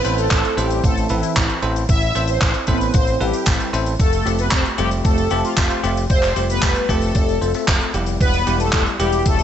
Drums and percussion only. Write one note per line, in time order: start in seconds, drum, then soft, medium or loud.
0.05 closed hi-hat medium
0.18 closed hi-hat medium
0.31 kick loud
0.31 clap loud
0.31 closed hi-hat loud
0.45 closed hi-hat medium
0.58 closed hi-hat medium
0.70 closed hi-hat medium
0.84 kick loud
0.84 closed hi-hat loud
0.97 closed hi-hat medium
1.09 closed hi-hat medium
1.23 closed hi-hat medium
1.36 kick loud
1.36 clap loud
1.36 closed hi-hat loud
1.50 closed hi-hat medium
1.63 closed hi-hat medium
1.76 closed hi-hat medium
1.89 kick loud
1.89 closed hi-hat loud
2.02 closed hi-hat medium
2.15 closed hi-hat medium
2.27 closed hi-hat medium
2.41 kick loud
2.41 clap loud
2.41 closed hi-hat loud
2.54 closed hi-hat medium
2.67 kick medium
2.67 closed hi-hat medium
2.81 closed hi-hat medium
2.94 kick loud
2.94 closed hi-hat loud
3.07 closed hi-hat medium
3.21 closed hi-hat medium
3.33 closed hi-hat medium
3.46 kick loud
3.46 clap loud
3.46 closed hi-hat loud
3.60 closed hi-hat medium
3.74 closed hi-hat medium
3.86 closed hi-hat medium
4.00 kick loud
4.00 closed hi-hat loud
4.13 closed hi-hat medium
4.27 closed hi-hat medium
4.39 closed hi-hat medium
4.51 kick loud
4.51 clap loud
4.51 closed hi-hat medium
4.65 closed hi-hat medium
4.78 closed hi-hat medium
4.91 closed hi-hat medium
5.05 kick loud
5.05 closed hi-hat loud
5.18 closed hi-hat medium
5.30 closed hi-hat medium
5.45 closed hi-hat medium
5.57 kick loud
5.57 clap loud
5.57 closed hi-hat medium
5.70 closed hi-hat medium
5.84 closed hi-hat medium
5.97 closed hi-hat medium
6.10 kick loud
6.10 closed hi-hat medium
6.23 clap soft
6.23 closed hi-hat soft
6.36 closed hi-hat medium
6.50 closed hi-hat medium
6.62 kick loud
6.62 clap loud
6.62 closed hi-hat loud
6.75 closed hi-hat medium
6.89 kick medium
6.89 closed hi-hat medium
7.02 closed hi-hat medium
7.15 kick loud
7.15 closed hi-hat loud
7.29 closed hi-hat medium
7.42 closed hi-hat medium
7.54 closed hi-hat medium
7.68 kick loud
7.68 clap loud
7.68 closed hi-hat medium
7.81 closed hi-hat medium
7.94 closed hi-hat medium
8.06 closed hi-hat medium
8.21 kick loud
8.21 closed hi-hat loud
8.34 closed hi-hat medium
8.47 closed hi-hat medium
8.60 closed hi-hat medium
8.72 kick loud
8.72 clap loud
8.72 closed hi-hat medium
8.86 closed hi-hat medium
9.00 closed hi-hat medium
9.12 closed hi-hat medium
9.26 kick loud
9.26 closed hi-hat loud
9.39 closed hi-hat medium